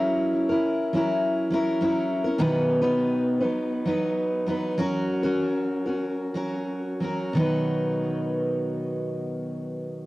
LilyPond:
\new Staff \with { instrumentName = "Steel-string acoustic guitar" } { \time 4/4 \key b \major \tempo 4 = 98 <fis cis' e' ais'>8. <cis' e' ais'>8. <fis cis' e' ais'>4 <fis cis' e' ais'>8 <fis cis' e' ais'>8. <cis' e' ais'>16 | <b, dis fis b dis' b'>8. <b, dis fis b dis' b'>4 <fis b dis' b'>8. <fis b dis' b'>4 <fis b dis' b'>8 | <fis cis' fis' ais'>8. <fis cis' fis' ais'>4 <cis' fis' ais'>8. <fis cis' fis' ais'>4 <fis cis' fis' ais'>8 | <b, dis fis b dis' b'>1 | }